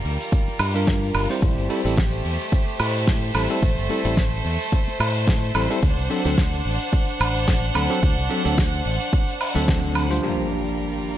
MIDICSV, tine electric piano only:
0, 0, Header, 1, 2, 480
1, 0, Start_track
1, 0, Tempo, 550459
1, 1243, Time_signature, 4, 2, 24, 8
1, 9748, End_track
2, 0, Start_track
2, 0, Title_t, "Tine electric piano"
2, 0, Program_c, 0, 4
2, 649, Note_on_c, 0, 55, 87
2, 652, Note_on_c, 0, 62, 77
2, 655, Note_on_c, 0, 65, 77
2, 659, Note_on_c, 0, 70, 92
2, 1100, Note_off_c, 0, 55, 0
2, 1102, Note_off_c, 0, 62, 0
2, 1103, Note_off_c, 0, 65, 0
2, 1105, Note_off_c, 0, 70, 0
2, 1131, Note_on_c, 0, 55, 85
2, 1134, Note_on_c, 0, 60, 78
2, 1138, Note_on_c, 0, 64, 81
2, 1138, Note_on_c, 0, 72, 95
2, 1454, Note_off_c, 0, 55, 0
2, 1456, Note_off_c, 0, 60, 0
2, 1458, Note_off_c, 0, 64, 0
2, 1458, Note_off_c, 0, 72, 0
2, 1478, Note_on_c, 0, 55, 87
2, 1480, Note_on_c, 0, 60, 79
2, 1483, Note_on_c, 0, 64, 83
2, 1485, Note_on_c, 0, 69, 96
2, 1575, Note_off_c, 0, 55, 0
2, 1576, Note_off_c, 0, 60, 0
2, 1578, Note_off_c, 0, 64, 0
2, 1579, Note_off_c, 0, 69, 0
2, 1609, Note_on_c, 0, 55, 85
2, 1610, Note_on_c, 0, 60, 77
2, 1613, Note_on_c, 0, 64, 75
2, 1618, Note_on_c, 0, 69, 92
2, 1688, Note_off_c, 0, 55, 0
2, 1689, Note_off_c, 0, 60, 0
2, 1691, Note_off_c, 0, 64, 0
2, 1693, Note_off_c, 0, 69, 0
2, 2916, Note_on_c, 0, 55, 71
2, 2917, Note_on_c, 0, 60, 65
2, 2921, Note_on_c, 0, 64, 66
2, 2925, Note_on_c, 0, 69, 77
2, 3020, Note_off_c, 0, 55, 0
2, 3021, Note_off_c, 0, 60, 0
2, 3023, Note_off_c, 0, 64, 0
2, 3025, Note_off_c, 0, 69, 0
2, 3047, Note_on_c, 0, 55, 88
2, 3051, Note_on_c, 0, 60, 83
2, 3054, Note_on_c, 0, 64, 84
2, 3057, Note_on_c, 0, 69, 101
2, 3128, Note_off_c, 0, 55, 0
2, 3130, Note_off_c, 0, 60, 0
2, 3131, Note_off_c, 0, 64, 0
2, 3132, Note_off_c, 0, 69, 0
2, 3395, Note_on_c, 0, 55, 88
2, 3397, Note_on_c, 0, 60, 81
2, 3401, Note_on_c, 0, 64, 81
2, 3404, Note_on_c, 0, 69, 101
2, 3494, Note_off_c, 0, 55, 0
2, 3494, Note_off_c, 0, 60, 0
2, 3497, Note_off_c, 0, 64, 0
2, 3498, Note_off_c, 0, 69, 0
2, 3527, Note_on_c, 0, 55, 85
2, 3530, Note_on_c, 0, 60, 77
2, 3531, Note_on_c, 0, 64, 80
2, 3536, Note_on_c, 0, 69, 87
2, 3607, Note_off_c, 0, 55, 0
2, 3609, Note_off_c, 0, 60, 0
2, 3610, Note_off_c, 0, 64, 0
2, 3612, Note_off_c, 0, 69, 0
2, 4837, Note_on_c, 0, 55, 74
2, 4839, Note_on_c, 0, 60, 71
2, 4841, Note_on_c, 0, 64, 65
2, 4844, Note_on_c, 0, 69, 79
2, 4941, Note_off_c, 0, 55, 0
2, 4942, Note_off_c, 0, 60, 0
2, 4943, Note_off_c, 0, 64, 0
2, 4944, Note_off_c, 0, 69, 0
2, 4969, Note_on_c, 0, 55, 95
2, 4973, Note_on_c, 0, 60, 88
2, 4974, Note_on_c, 0, 64, 87
2, 4979, Note_on_c, 0, 69, 102
2, 5049, Note_off_c, 0, 55, 0
2, 5051, Note_off_c, 0, 60, 0
2, 5051, Note_off_c, 0, 64, 0
2, 5054, Note_off_c, 0, 69, 0
2, 5313, Note_on_c, 0, 54, 90
2, 5318, Note_on_c, 0, 60, 80
2, 5321, Note_on_c, 0, 62, 84
2, 5325, Note_on_c, 0, 69, 99
2, 5413, Note_off_c, 0, 54, 0
2, 5415, Note_off_c, 0, 60, 0
2, 5417, Note_off_c, 0, 62, 0
2, 5418, Note_off_c, 0, 69, 0
2, 5448, Note_on_c, 0, 54, 84
2, 5451, Note_on_c, 0, 60, 78
2, 5454, Note_on_c, 0, 62, 75
2, 5456, Note_on_c, 0, 69, 93
2, 5528, Note_off_c, 0, 54, 0
2, 5529, Note_off_c, 0, 60, 0
2, 5531, Note_off_c, 0, 62, 0
2, 5532, Note_off_c, 0, 69, 0
2, 6756, Note_on_c, 0, 54, 74
2, 6758, Note_on_c, 0, 60, 71
2, 6763, Note_on_c, 0, 62, 66
2, 6764, Note_on_c, 0, 69, 79
2, 6860, Note_off_c, 0, 54, 0
2, 6861, Note_off_c, 0, 60, 0
2, 6864, Note_off_c, 0, 62, 0
2, 6864, Note_off_c, 0, 69, 0
2, 6884, Note_on_c, 0, 54, 96
2, 6887, Note_on_c, 0, 60, 85
2, 6890, Note_on_c, 0, 62, 86
2, 6894, Note_on_c, 0, 69, 102
2, 6966, Note_off_c, 0, 54, 0
2, 6968, Note_off_c, 0, 60, 0
2, 6969, Note_off_c, 0, 62, 0
2, 6971, Note_off_c, 0, 69, 0
2, 7234, Note_on_c, 0, 54, 93
2, 7236, Note_on_c, 0, 60, 82
2, 7238, Note_on_c, 0, 62, 81
2, 7243, Note_on_c, 0, 69, 99
2, 7333, Note_off_c, 0, 54, 0
2, 7334, Note_off_c, 0, 60, 0
2, 7335, Note_off_c, 0, 62, 0
2, 7338, Note_off_c, 0, 69, 0
2, 7363, Note_on_c, 0, 54, 83
2, 7367, Note_on_c, 0, 60, 76
2, 7370, Note_on_c, 0, 62, 76
2, 7372, Note_on_c, 0, 69, 94
2, 7445, Note_off_c, 0, 54, 0
2, 7448, Note_off_c, 0, 60, 0
2, 7449, Note_off_c, 0, 62, 0
2, 7450, Note_off_c, 0, 69, 0
2, 8324, Note_on_c, 0, 54, 86
2, 8329, Note_on_c, 0, 60, 81
2, 8332, Note_on_c, 0, 62, 81
2, 8334, Note_on_c, 0, 69, 102
2, 8778, Note_off_c, 0, 54, 0
2, 8780, Note_off_c, 0, 60, 0
2, 8782, Note_off_c, 0, 62, 0
2, 8783, Note_off_c, 0, 69, 0
2, 8807, Note_on_c, 0, 55, 91
2, 8810, Note_on_c, 0, 62, 85
2, 8813, Note_on_c, 0, 65, 80
2, 8816, Note_on_c, 0, 72, 101
2, 8911, Note_on_c, 0, 53, 69
2, 8913, Note_off_c, 0, 62, 0
2, 8917, Note_on_c, 0, 58, 64
2, 8923, Note_on_c, 0, 62, 61
2, 8926, Note_on_c, 0, 67, 77
2, 9133, Note_off_c, 0, 55, 0
2, 9135, Note_off_c, 0, 65, 0
2, 9137, Note_off_c, 0, 72, 0
2, 9748, Note_off_c, 0, 53, 0
2, 9748, Note_off_c, 0, 58, 0
2, 9748, Note_off_c, 0, 62, 0
2, 9748, Note_off_c, 0, 67, 0
2, 9748, End_track
0, 0, End_of_file